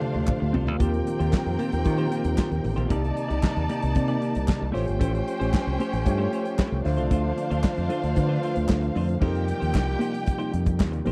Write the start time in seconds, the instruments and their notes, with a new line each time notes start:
Already playing: tonewheel organ A#2 F3 A3 D4 F4, tine electric piano D3 A3 F4 G4 C5, violin section D4 C5 F5
0.02 high tom
0.14 fingered electric bass D2, muted clean electric guitar stroke, high tom
0.27 kick, clap, mid tom
0.40 fingered electric bass D2, muted clean electric guitar stroke
0.53 fingered electric bass C2, clean electric guitar C4 F4 A4 C5, floor tom
0.67 fingered electric bass D2, muted clean electric guitar stroke, floor tom
0.79 fingered electric bass D#2, tine electric piano D#3 C4 F4 G4, clean electric guitar A#3 F4 G4 C5, tonewheel organ A#3 D#4 G4, violin section C4 A#4 G5, kick, closed hi-hat
0.93 muted clean electric guitar stroke, closed hi-hat
1.07 muted clean electric guitar stroke, closed hi-hat
1.19 fingered electric bass D#2, clean electric guitar A#3 F4 G4 C5, closed hi-hat
1.33 kick, snare, clap
1.35 clap
1.46 fingered electric bass F2, muted clean electric guitar stroke, closed hi-hat
1.59 clean electric guitar A#3 F4 G4 C5, closed hi-hat
1.72 fingered electric bass D#2, muted clean electric guitar stroke, closed hi-hat
1.84 tine electric piano D#3 C4 F4 G4, fingered electric bass D#3, muted clean electric guitar stroke, kick, closed hi-hat
1.98 clean electric guitar A#3 F4 G4 C5, closed hi-hat
2.11 clean electric guitar A#3 F4 G4 C5, closed hi-hat
2.24 fingered electric bass D#2, closed hi-hat
2.37 clean electric guitar A#3 F4 G4, kick, snare, clap
2.39 clean electric guitar C5, clap
2.51 fingered electric bass D#2, muted clean electric guitar stroke, closed hi-hat
2.64 fingered electric bass A1, muted clean electric guitar stroke, open hi-hat
2.76 fingered electric bass A#1, clean electric guitar A#3 F4 G4 C5, closed hi-hat
2.89 fingered electric bass C2, tine electric piano C3 A#3 D#4 D5, tonewheel organ C3 D#3 A#3 D5, clean electric guitar A#3 D#4 G4 D5, violin section D#4 D5 A5, kick, closed hi-hat
3.03 muted clean electric guitar stroke, closed hi-hat
3.15 muted clean electric guitar stroke, closed hi-hat
3.29 fingered electric bass C2, clean electric guitar A#3 D#4 G4 D5, closed hi-hat
3.43 kick, snare, clap
3.45 clap
3.56 fingered electric bass D#2, muted clean electric guitar stroke, closed hi-hat
3.69 clean electric guitar A#3 D#4 G4 D5, closed hi-hat
3.82 fingered electric bass C2, muted clean electric guitar stroke, closed hi-hat
3.95 tine electric piano C3 A#3 D#4 D5, fingered electric bass C3, muted clean electric guitar stroke, kick, closed hi-hat
4.08 clean electric guitar A#3 D#4 G4 D5, closed hi-hat
4.21 clean electric guitar A#3 D#4 G4 D5, closed hi-hat
4.34 fingered electric bass C2, muted clean electric guitar stroke, closed hi-hat
4.47 muted clean electric guitar stroke, kick, snare, clap
4.50 clap
4.60 fingered electric bass C2, muted clean electric guitar stroke
4.72 fingered electric bass A1, tonewheel organ F3 A3 C#4, clean electric guitar A3 C#4 G4 C5, tine electric piano A3 F4 G4 C5 C#5, violin section C#4 C5 G5, snare, open hi-hat
4.87 fingered electric bass G1, muted clean electric guitar stroke, closed hi-hat
4.99 fingered electric bass A1, clean electric guitar A3 C#4 G4 C5, kick, closed hi-hat
5.13 muted clean electric guitar stroke, closed hi-hat
5.27 muted clean electric guitar stroke, closed hi-hat
5.40 fingered electric bass A1, clean electric guitar A3 C#4 G4 C5, closed hi-hat
5.53 kick, snare, clap
5.55 clap
5.66 fingered electric bass C2, muted clean electric guitar stroke
5.79 clean electric guitar A3 C#4 G4 C5, closed hi-hat
5.92 fingered electric bass A1, muted clean electric guitar stroke, closed hi-hat
6.05 fingered electric bass G2, tine electric piano A3 F4 G4 C5 C#5, muted clean electric guitar stroke, kick, closed hi-hat
6.18 clean electric guitar A3 C#4 G4 C5
6.32 clean electric guitar A3 C#4 G4 C5, closed hi-hat
6.45 muted clean electric guitar stroke, closed hi-hat
6.58 clean electric guitar A3 C#4 G4, kick, snare, clap
6.60 clean electric guitar C5, clap
6.71 fingered electric bass C2, muted clean electric guitar stroke
6.84 fingered electric bass D2, tine electric piano D3 A3 F4 C5, tonewheel organ F3 D4 F4, violin section D4 C5 F5, muted clean electric guitar stroke, snare, open hi-hat
6.97 fingered electric bass C2, clean electric guitar A3 D4 F4 C5, closed hi-hat
7.10 fingered electric bass D2, clean electric guitar A3 D4 F4 C5, kick, closed hi-hat
7.23 muted clean electric guitar stroke
7.37 muted clean electric guitar stroke, closed hi-hat
7.50 fingered electric bass D2, clean electric guitar A3 D4 F4 C5, closed hi-hat
7.63 kick, snare, clap
7.65 clap
7.77 fingered electric bass F2, muted clean electric guitar stroke, closed hi-hat
7.89 clean electric guitar A3 D4 F4 C5, closed hi-hat
8.02 fingered electric bass D2, muted clean electric guitar stroke, closed hi-hat
8.16 tine electric piano D3 A3 F4 B4, fingered electric bass D3, muted clean electric guitar stroke, kick, closed hi-hat
8.23 tine electric piano C5
8.29 clean electric guitar A3 D4 F4 C5
8.42 clean electric guitar A3 D4 F4 C5, tine electric piano C5, closed hi-hat
8.55 fingered electric bass D2, muted clean electric guitar stroke, closed hi-hat
8.68 fingered electric bass D2, tine electric piano F5, kick, snare, clap
8.71 clap
8.82 muted clean electric guitar stroke, closed hi-hat
8.95 fingered electric bass F2, clean electric guitar A3 D4 F4 C5, open hi-hat
9.08 muted clean electric guitar stroke, closed hi-hat
9.20 fingered electric bass F2, tonewheel organ C3 G3 A#3 D#4 F4, tine electric piano F3 D#4 G4 A4, clean electric guitar A#3 D#4 G4 C5, violin section G4 G5, kick, crash
9.28 tine electric piano A#4
9.35 closed hi-hat
9.48 muted clean electric guitar stroke, closed hi-hat
9.60 fingered electric bass D#2, clean electric guitar A#3 D#4 G4 C5, closed hi-hat
9.74 fingered electric bass C2, kick, snare, clap
9.76 clap
9.87 muted clean electric guitar stroke
9.99 clean electric guitar A#3 D#4 G4 C5, closed hi-hat
10.13 muted clean electric guitar stroke, closed hi-hat
10.26 muted clean electric guitar stroke, kick, closed hi-hat
10.38 clean electric guitar A#3 D#4 G4 C5, closed hi-hat
10.53 fingered electric bass F2, muted clean electric guitar stroke, closed hi-hat
10.66 muted clean electric guitar stroke, kick, closed hi-hat
10.80 fingered electric bass D#2, kick, snare, clap
10.81 clap
10.92 muted clean electric guitar stroke, closed hi-hat
11.05 fingered electric bass A1, tine electric piano F3 D#4 G4 A#4, clean electric guitar A#3 D#4 G4 C5, open hi-hat